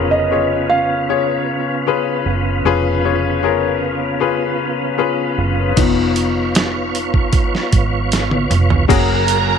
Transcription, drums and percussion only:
5.77 kick, closed hi-hat, crash
6.16 closed hi-hat
6.55 snare, closed hi-hat
6.95 closed hi-hat
7.14 kick
7.33 kick, closed hi-hat
7.55 snare
7.73 kick, closed hi-hat
8.12 snare, closed hi-hat
8.31 high tom
8.51 closed hi-hat, mid tom
8.70 floor tom
8.90 kick, closed hi-hat, crash
9.28 closed hi-hat

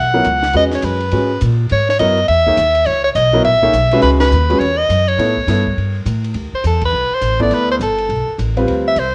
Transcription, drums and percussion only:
0.24 hi-hat pedal, ride
0.43 snare
0.53 ride
0.71 snare, ride
0.82 hi-hat pedal, ride
1.00 ride
1.11 ride
1.41 hi-hat pedal, ride
1.69 ride
1.89 snare
1.99 hi-hat pedal, ride
2.18 ride
2.28 ride
2.46 kick
2.57 hi-hat pedal, ride
2.75 ride
2.86 ride
3.15 hi-hat pedal, ride
3.44 ride
3.63 kick
3.73 hi-hat pedal, ride
3.91 ride
4.02 snare, ride
4.20 snare, ride
4.32 hi-hat pedal
4.50 ride
4.61 ride
4.90 hi-hat pedal, ride
5.08 ride
5.19 ride
5.37 kick
5.48 snare, hi-hat pedal, ride
5.66 kick, ride
5.78 ride
6.06 hi-hat pedal, ride
6.24 ride
6.34 ride
6.64 hi-hat pedal, ride
6.82 kick, ride
7.21 hi-hat pedal, ride
7.40 kick, ride
7.51 ride
7.81 hi-hat pedal, ride
7.98 ride
8.09 ride
8.39 hi-hat pedal, ride
8.57 ride
8.68 ride
8.96 hi-hat pedal, ride

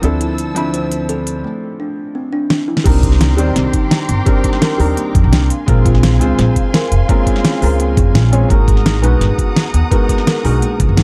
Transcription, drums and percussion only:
0.03 closed hi-hat
0.21 closed hi-hat
0.38 closed hi-hat
0.56 closed hi-hat
0.74 closed hi-hat
0.92 closed hi-hat
1.09 closed hi-hat
1.27 closed hi-hat
2.50 snare
2.77 snare
2.86 kick, closed hi-hat, crash
3.03 kick, closed hi-hat
3.12 snare
3.21 snare, closed hi-hat
3.38 closed hi-hat
3.56 snare, closed hi-hat
3.74 kick, closed hi-hat
3.91 snare, closed hi-hat
4.09 closed hi-hat
4.26 kick, closed hi-hat
4.44 kick, closed hi-hat
4.53 snare
4.62 snare, closed hi-hat
4.80 open hi-hat
4.97 closed hi-hat
5.15 kick, closed hi-hat
5.33 snare, closed hi-hat
5.50 closed hi-hat
5.68 kick, closed hi-hat
5.86 kick, closed hi-hat
5.95 snare
6.03 snare, closed hi-hat
6.21 closed hi-hat
6.39 snare, closed hi-hat
6.56 kick, closed hi-hat
6.74 snare, closed hi-hat
6.92 closed hi-hat
7.09 kick, closed hi-hat
7.27 kick, closed hi-hat
7.36 snare
7.45 snare, closed hi-hat
7.62 open hi-hat
7.80 closed hi-hat
7.97 kick, closed hi-hat
8.15 snare, closed hi-hat
8.33 closed hi-hat
8.50 kick, closed hi-hat
8.68 kick, closed hi-hat
8.77 snare
8.86 snare, closed hi-hat
9.04 closed hi-hat
9.21 snare, closed hi-hat
9.38 kick, closed hi-hat
9.56 snare, closed hi-hat
9.74 closed hi-hat
9.91 kick, closed hi-hat
10.09 kick, closed hi-hat
10.18 snare
10.27 snare, closed hi-hat
10.45 open hi-hat
10.62 closed hi-hat
10.80 kick, closed hi-hat
10.97 snare, closed hi-hat

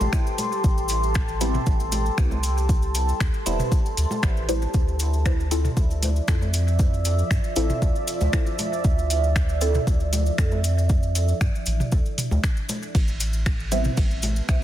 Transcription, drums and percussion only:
0.01 high conga, cabasa
0.13 finger snap, kick, cabasa
0.27 cabasa
0.38 open hi-hat, high conga, cabasa
0.52 cabasa
0.64 kick, cabasa
0.78 cabasa
0.88 open hi-hat, cabasa
1.03 cabasa
1.14 finger snap, kick, cabasa
1.28 cabasa
1.41 open hi-hat, cabasa
1.54 mid tom, cabasa
1.66 kick, cabasa
1.80 cabasa
1.92 open hi-hat, high conga, cabasa
2.06 cabasa
2.18 finger snap, kick, cabasa
2.31 high conga, cabasa
2.43 open hi-hat, cabasa
2.58 cabasa
2.69 kick, cabasa
2.82 cabasa
2.95 open hi-hat, cabasa
3.09 cabasa
3.20 finger snap, kick, cabasa
3.34 cabasa
3.46 open hi-hat, cabasa
3.59 mid tom, cabasa
3.72 kick, cabasa
3.86 cabasa
3.97 open hi-hat, cabasa
4.11 high conga, cabasa
4.23 finger snap, kick, cabasa
4.37 cabasa
4.48 open hi-hat, high conga, cabasa
4.62 cabasa
4.74 kick, cabasa
4.88 cabasa
4.99 open hi-hat, cabasa
5.13 cabasa
5.26 finger snap, kick, cabasa
5.40 cabasa
5.51 open hi-hat, cabasa
5.65 mid tom, cabasa
5.77 kick, cabasa
5.91 cabasa
6.03 open hi-hat, high conga, cabasa
6.16 cabasa
6.28 finger snap, kick, cabasa
6.42 high conga, cabasa
6.54 open hi-hat, cabasa
6.68 cabasa
6.79 kick, cabasa
6.94 cabasa
7.05 open hi-hat, cabasa
7.19 cabasa
7.31 finger snap, kick, cabasa
7.44 cabasa
7.56 open hi-hat, cabasa
7.70 mid tom, cabasa
7.82 kick, cabasa
7.96 cabasa
8.08 open hi-hat, cabasa
8.21 high conga, cabasa
8.33 finger snap, kick, cabasa
8.46 cabasa
8.59 open hi-hat, high conga, cabasa
8.73 cabasa
8.84 kick, cabasa
8.99 cabasa
9.10 open hi-hat, cabasa
9.24 cabasa
9.36 finger snap, kick, cabasa
9.49 cabasa
9.61 open hi-hat, cabasa
9.75 mid tom, cabasa
9.87 kick, cabasa
10.00 cabasa
10.13 open hi-hat, high conga, cabasa
10.26 cabasa
10.38 finger snap, kick, cabasa
10.51 high conga, cabasa
10.64 open hi-hat, cabasa
10.78 cabasa
10.89 kick, cabasa
11.03 cabasa
11.15 open hi-hat, cabasa
11.28 cabasa
11.41 finger snap, kick, cabasa
11.55 cabasa
11.66 open hi-hat, cabasa
11.80 mid tom, cabasa
11.92 kick, cabasa
12.06 cabasa
12.18 open hi-hat, mid tom, cabasa
12.31 high conga, cabasa
12.44 finger snap, kick, cabasa
12.57 cabasa
12.69 open hi-hat, high conga, cabasa
12.83 cabasa
12.95 kick, ride, cabasa
13.08 cabasa
13.20 open hi-hat, cabasa
13.33 cabasa
13.46 finger snap, kick, ride, cabasa
13.60 cabasa
13.72 open hi-hat, cabasa
13.84 mid tom, cabasa
13.97 kick, ride, cabasa
14.11 cabasa
14.22 open hi-hat, high conga, cabasa
14.36 cabasa
14.49 finger snap, kick, ride, cabasa

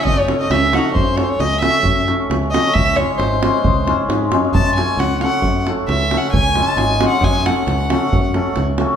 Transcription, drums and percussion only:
0.07 davul low
0.19 davul high
0.28 davul high
0.41 davul high
0.51 davul high
0.73 davul high
0.86 davul high
0.96 davul low
1.18 davul high
1.40 davul high
1.54 davul high
1.62 davul high
1.85 davul low
2.08 davul high
2.31 davul high
2.43 davul high
2.54 davul high
2.75 davul low
2.97 davul high
3.20 davul high
3.33 davul high
3.43 davul high
3.65 davul low
3.88 davul high
4.01 davul high
4.10 davul high
4.32 davul high
4.45 davul high
4.55 davul low
4.78 davul high
5.00 davul high
5.12 davul high
5.21 davul high
5.44 davul low
5.67 davul high
5.89 davul high
6.01 davul high
6.11 davul high
6.34 davul low
6.55 davul high
6.78 davul high
6.90 davul high
7.01 davul high
7.23 davul low
7.36 davul high
7.46 davul high
7.68 davul high
7.81 davul high
7.90 davul high
8.03 davul high
8.13 davul low
8.34 davul high
8.56 davul high
8.78 davul high

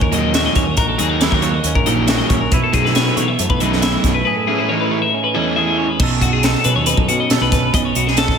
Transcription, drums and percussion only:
0.01 kick
0.12 closed hi-hat
0.34 snare, closed hi-hat
0.55 kick, closed hi-hat
0.77 kick, closed hi-hat
0.99 closed hi-hat
1.21 snare, closed hi-hat
1.32 kick
1.42 closed hi-hat
1.64 closed hi-hat
1.75 kick
1.86 closed hi-hat
2.08 snare, closed hi-hat
2.30 kick, closed hi-hat
2.52 kick, closed hi-hat
2.73 kick, closed hi-hat
2.86 snare
2.95 snare, closed hi-hat
3.17 closed hi-hat
3.39 closed hi-hat
3.50 kick
3.60 closed hi-hat
3.73 snare
3.82 snare, closed hi-hat
4.04 kick, snare, closed hi-hat
6.00 kick, crash
6.21 kick, closed hi-hat
6.43 snare, closed hi-hat
6.55 snare
6.64 closed hi-hat
6.86 closed hi-hat
6.97 kick
7.09 closed hi-hat
7.30 snare, closed hi-hat
7.52 kick, snare, closed hi-hat
7.74 kick, closed hi-hat
7.95 closed hi-hat
8.08 snare
8.17 snare, closed hi-hat
8.28 kick, snare

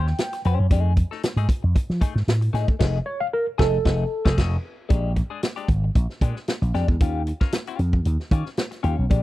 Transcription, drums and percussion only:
0.07 snare
0.18 snare, closed hi-hat
0.33 snare, closed hi-hat
0.45 closed hi-hat
0.71 kick, closed hi-hat
0.97 kick, closed hi-hat
1.12 snare
1.23 snare, closed hi-hat
1.37 closed hi-hat
1.49 kick, closed hi-hat
1.76 kick, closed hi-hat
1.90 snare
2.01 kick, closed hi-hat
2.17 snare
2.28 snare, closed hi-hat
2.42 closed hi-hat
2.55 snare, closed hi-hat
2.68 kick
2.81 kick, snare, crash
3.59 kick, snare
3.85 kick, snare
4.25 kick, snare
4.38 kick, snare, crash
4.90 kick, closed hi-hat
5.16 kick, closed hi-hat
5.43 snare, closed hi-hat
5.57 closed hi-hat
5.68 kick, closed hi-hat
5.95 kick, closed hi-hat
6.10 snare
6.21 kick, closed hi-hat
6.36 snare
6.48 snare, closed hi-hat
6.63 closed hi-hat
6.75 snare, closed hi-hat
6.88 kick
7.01 kick, closed hi-hat
7.27 closed hi-hat
7.41 kick, snare
7.52 snare, closed hi-hat
7.67 closed hi-hat
7.79 closed hi-hat
7.93 kick
8.05 closed hi-hat
8.20 snare
8.31 kick, closed hi-hat
8.46 snare
8.57 snare, closed hi-hat
8.71 snare, closed hi-hat
8.84 closed hi-hat
9.10 kick, closed hi-hat

